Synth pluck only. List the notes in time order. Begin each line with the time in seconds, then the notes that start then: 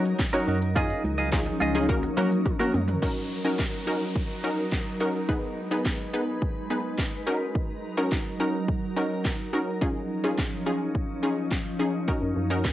Already playing: C#4 D#4 F#4 C#5
0.33 C#4 D#4 F#4 C#5
0.76 C#4 D#4 F4 G#4
1.32 C#4 D#4 F4 G#4
1.75 C#4 D#4 F4 G#4
1.89 A#3 C#4 F#4 A#4
2.17 A#3 C#4 F#4 A#4
2.60 A#3 C#4 F#4 A#4
3.02 C#4 D#4 F#4 A#4
3.45 C#4 D#4 F#4 A#4
3.87 C#4 D#4 F#4 A#4
4.44 C#4 D#4 F#4 A#4
5.00 C#4 D#4 F#4 A#4
5.29 B3 D#4 G#4 B4
5.71 B3 D#4 G#4 B4
6.13 B3 D#4 G#4 B4
6.70 B3 D#4 G#4 B4
7.27 C#4 D#4 F#4 A#4
7.97 C#4 D#4 F#4 A#4
8.40 C#4 D#4 F#4 A#4
8.96 C#4 D#4 F#4 A#4
9.53 C#4 D#4 F#4 A#4
9.81 C#4 D#4 F4 G#4
10.24 C#4 D#4 F4 G#4
10.66 C#4 D#4 F4 G#4
11.23 C#4 D#4 F4 G#4
11.79 C#4 D#4 F4 G#4
12.08 C#4 D#4 F#4 A#4
12.50 C#4 D#4 F#4 A#4